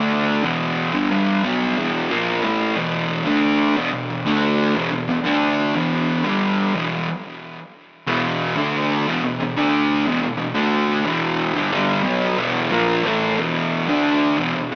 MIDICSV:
0, 0, Header, 1, 2, 480
1, 0, Start_track
1, 0, Key_signature, 1, "minor"
1, 0, Tempo, 663717
1, 75, Time_signature, 4, 2, 24, 8
1, 10667, End_track
2, 0, Start_track
2, 0, Title_t, "Distorted electric guitar"
2, 0, Program_c, 0, 30
2, 0, Note_on_c, 0, 50, 102
2, 0, Note_on_c, 0, 57, 111
2, 0, Note_on_c, 0, 62, 110
2, 307, Note_off_c, 0, 50, 0
2, 309, Note_off_c, 0, 57, 0
2, 309, Note_off_c, 0, 62, 0
2, 310, Note_on_c, 0, 40, 91
2, 316, Note_on_c, 0, 47, 89
2, 319, Note_on_c, 0, 52, 105
2, 667, Note_off_c, 0, 40, 0
2, 669, Note_off_c, 0, 47, 0
2, 671, Note_off_c, 0, 52, 0
2, 671, Note_on_c, 0, 43, 96
2, 673, Note_on_c, 0, 50, 108
2, 787, Note_off_c, 0, 43, 0
2, 788, Note_off_c, 0, 50, 0
2, 801, Note_on_c, 0, 43, 90
2, 803, Note_on_c, 0, 50, 95
2, 808, Note_on_c, 0, 55, 89
2, 1032, Note_off_c, 0, 43, 0
2, 1033, Note_off_c, 0, 50, 0
2, 1036, Note_off_c, 0, 55, 0
2, 1039, Note_on_c, 0, 47, 99
2, 1042, Note_on_c, 0, 54, 102
2, 1045, Note_on_c, 0, 59, 112
2, 1271, Note_off_c, 0, 47, 0
2, 1273, Note_off_c, 0, 54, 0
2, 1274, Note_off_c, 0, 59, 0
2, 1279, Note_on_c, 0, 40, 111
2, 1284, Note_on_c, 0, 47, 99
2, 1286, Note_on_c, 0, 52, 102
2, 1511, Note_off_c, 0, 40, 0
2, 1514, Note_off_c, 0, 47, 0
2, 1515, Note_off_c, 0, 52, 0
2, 1522, Note_on_c, 0, 46, 102
2, 1526, Note_on_c, 0, 53, 103
2, 1529, Note_on_c, 0, 58, 91
2, 1753, Note_off_c, 0, 46, 0
2, 1755, Note_off_c, 0, 53, 0
2, 1757, Note_off_c, 0, 58, 0
2, 1758, Note_on_c, 0, 45, 93
2, 1764, Note_on_c, 0, 52, 94
2, 1769, Note_on_c, 0, 57, 108
2, 1991, Note_off_c, 0, 45, 0
2, 1995, Note_off_c, 0, 52, 0
2, 1995, Note_on_c, 0, 40, 103
2, 1997, Note_off_c, 0, 57, 0
2, 1998, Note_on_c, 0, 47, 124
2, 2002, Note_on_c, 0, 52, 127
2, 2348, Note_off_c, 0, 47, 0
2, 2350, Note_off_c, 0, 40, 0
2, 2351, Note_on_c, 0, 50, 95
2, 2354, Note_off_c, 0, 52, 0
2, 2357, Note_on_c, 0, 57, 88
2, 2358, Note_on_c, 0, 62, 97
2, 2709, Note_off_c, 0, 50, 0
2, 2711, Note_off_c, 0, 57, 0
2, 2712, Note_off_c, 0, 62, 0
2, 2718, Note_on_c, 0, 40, 86
2, 2724, Note_on_c, 0, 47, 109
2, 2826, Note_off_c, 0, 40, 0
2, 2833, Note_off_c, 0, 47, 0
2, 2835, Note_on_c, 0, 40, 65
2, 2841, Note_on_c, 0, 47, 76
2, 2958, Note_off_c, 0, 40, 0
2, 2961, Note_off_c, 0, 47, 0
2, 2966, Note_on_c, 0, 40, 74
2, 2970, Note_on_c, 0, 47, 78
2, 3076, Note_off_c, 0, 47, 0
2, 3079, Note_on_c, 0, 50, 83
2, 3081, Note_on_c, 0, 57, 100
2, 3083, Note_off_c, 0, 40, 0
2, 3085, Note_on_c, 0, 62, 106
2, 3433, Note_off_c, 0, 50, 0
2, 3434, Note_off_c, 0, 57, 0
2, 3436, Note_off_c, 0, 62, 0
2, 3440, Note_on_c, 0, 40, 107
2, 3445, Note_on_c, 0, 47, 103
2, 3549, Note_off_c, 0, 40, 0
2, 3552, Note_off_c, 0, 47, 0
2, 3558, Note_on_c, 0, 40, 66
2, 3561, Note_on_c, 0, 47, 76
2, 3672, Note_off_c, 0, 40, 0
2, 3678, Note_off_c, 0, 47, 0
2, 3681, Note_on_c, 0, 40, 63
2, 3687, Note_on_c, 0, 47, 73
2, 3795, Note_off_c, 0, 47, 0
2, 3798, Note_on_c, 0, 50, 97
2, 3801, Note_off_c, 0, 40, 0
2, 3805, Note_on_c, 0, 57, 103
2, 3808, Note_on_c, 0, 62, 110
2, 4153, Note_off_c, 0, 50, 0
2, 4156, Note_off_c, 0, 57, 0
2, 4158, Note_off_c, 0, 62, 0
2, 4164, Note_on_c, 0, 40, 85
2, 4168, Note_on_c, 0, 47, 90
2, 4168, Note_on_c, 0, 52, 103
2, 4515, Note_off_c, 0, 40, 0
2, 4518, Note_off_c, 0, 47, 0
2, 4518, Note_off_c, 0, 52, 0
2, 4518, Note_on_c, 0, 43, 93
2, 4522, Note_on_c, 0, 50, 93
2, 4527, Note_on_c, 0, 55, 102
2, 4873, Note_off_c, 0, 43, 0
2, 4875, Note_off_c, 0, 50, 0
2, 4877, Note_on_c, 0, 40, 102
2, 4878, Note_off_c, 0, 55, 0
2, 4884, Note_on_c, 0, 47, 122
2, 4886, Note_on_c, 0, 52, 115
2, 5113, Note_off_c, 0, 40, 0
2, 5116, Note_off_c, 0, 47, 0
2, 5117, Note_off_c, 0, 52, 0
2, 5836, Note_on_c, 0, 40, 105
2, 5840, Note_on_c, 0, 47, 114
2, 5843, Note_on_c, 0, 52, 117
2, 6192, Note_off_c, 0, 40, 0
2, 6193, Note_off_c, 0, 47, 0
2, 6195, Note_on_c, 0, 50, 100
2, 6196, Note_off_c, 0, 52, 0
2, 6200, Note_on_c, 0, 57, 84
2, 6203, Note_on_c, 0, 62, 84
2, 6552, Note_off_c, 0, 50, 0
2, 6554, Note_off_c, 0, 57, 0
2, 6556, Note_off_c, 0, 62, 0
2, 6561, Note_on_c, 0, 40, 102
2, 6564, Note_on_c, 0, 47, 103
2, 6673, Note_off_c, 0, 40, 0
2, 6676, Note_off_c, 0, 47, 0
2, 6681, Note_on_c, 0, 40, 59
2, 6685, Note_on_c, 0, 47, 75
2, 6790, Note_off_c, 0, 40, 0
2, 6792, Note_off_c, 0, 47, 0
2, 6799, Note_on_c, 0, 40, 68
2, 6800, Note_on_c, 0, 47, 84
2, 6914, Note_off_c, 0, 47, 0
2, 6917, Note_on_c, 0, 50, 88
2, 6921, Note_off_c, 0, 40, 0
2, 6922, Note_on_c, 0, 57, 98
2, 6927, Note_on_c, 0, 62, 114
2, 7273, Note_off_c, 0, 50, 0
2, 7275, Note_off_c, 0, 57, 0
2, 7277, Note_on_c, 0, 40, 93
2, 7278, Note_off_c, 0, 62, 0
2, 7282, Note_on_c, 0, 47, 106
2, 7384, Note_off_c, 0, 40, 0
2, 7388, Note_off_c, 0, 47, 0
2, 7393, Note_on_c, 0, 40, 77
2, 7397, Note_on_c, 0, 47, 81
2, 7496, Note_off_c, 0, 40, 0
2, 7499, Note_off_c, 0, 47, 0
2, 7504, Note_on_c, 0, 40, 74
2, 7508, Note_on_c, 0, 47, 85
2, 7627, Note_off_c, 0, 47, 0
2, 7629, Note_on_c, 0, 50, 94
2, 7633, Note_on_c, 0, 57, 105
2, 7634, Note_off_c, 0, 40, 0
2, 7634, Note_on_c, 0, 62, 99
2, 7986, Note_on_c, 0, 40, 70
2, 7988, Note_off_c, 0, 50, 0
2, 7991, Note_off_c, 0, 57, 0
2, 7991, Note_off_c, 0, 62, 0
2, 7991, Note_on_c, 0, 47, 85
2, 7994, Note_on_c, 0, 52, 92
2, 8347, Note_off_c, 0, 40, 0
2, 8349, Note_on_c, 0, 43, 86
2, 8350, Note_off_c, 0, 47, 0
2, 8351, Note_off_c, 0, 52, 0
2, 8357, Note_on_c, 0, 50, 95
2, 8467, Note_off_c, 0, 43, 0
2, 8468, Note_off_c, 0, 50, 0
2, 8476, Note_on_c, 0, 43, 87
2, 8477, Note_on_c, 0, 50, 92
2, 8481, Note_on_c, 0, 55, 97
2, 8700, Note_off_c, 0, 50, 0
2, 8703, Note_on_c, 0, 47, 89
2, 8707, Note_off_c, 0, 55, 0
2, 8710, Note_on_c, 0, 54, 106
2, 8712, Note_off_c, 0, 43, 0
2, 8714, Note_on_c, 0, 59, 105
2, 8945, Note_off_c, 0, 47, 0
2, 8949, Note_off_c, 0, 54, 0
2, 8951, Note_off_c, 0, 59, 0
2, 8951, Note_on_c, 0, 40, 103
2, 8955, Note_on_c, 0, 47, 112
2, 8958, Note_on_c, 0, 52, 113
2, 9188, Note_off_c, 0, 47, 0
2, 9190, Note_off_c, 0, 40, 0
2, 9191, Note_on_c, 0, 46, 91
2, 9193, Note_off_c, 0, 52, 0
2, 9197, Note_on_c, 0, 53, 99
2, 9198, Note_on_c, 0, 58, 93
2, 9427, Note_off_c, 0, 46, 0
2, 9430, Note_on_c, 0, 45, 95
2, 9432, Note_off_c, 0, 53, 0
2, 9433, Note_off_c, 0, 58, 0
2, 9435, Note_on_c, 0, 52, 101
2, 9437, Note_on_c, 0, 57, 98
2, 9669, Note_off_c, 0, 45, 0
2, 9671, Note_off_c, 0, 52, 0
2, 9672, Note_off_c, 0, 57, 0
2, 9672, Note_on_c, 0, 40, 110
2, 9676, Note_on_c, 0, 47, 112
2, 9681, Note_on_c, 0, 52, 108
2, 10029, Note_off_c, 0, 40, 0
2, 10032, Note_off_c, 0, 47, 0
2, 10034, Note_off_c, 0, 52, 0
2, 10035, Note_on_c, 0, 50, 77
2, 10039, Note_on_c, 0, 57, 83
2, 10045, Note_on_c, 0, 62, 100
2, 10391, Note_off_c, 0, 50, 0
2, 10393, Note_off_c, 0, 57, 0
2, 10395, Note_off_c, 0, 62, 0
2, 10395, Note_on_c, 0, 40, 91
2, 10399, Note_on_c, 0, 47, 94
2, 10511, Note_off_c, 0, 40, 0
2, 10513, Note_off_c, 0, 47, 0
2, 10521, Note_on_c, 0, 40, 62
2, 10526, Note_on_c, 0, 47, 64
2, 10637, Note_off_c, 0, 40, 0
2, 10640, Note_off_c, 0, 47, 0
2, 10667, End_track
0, 0, End_of_file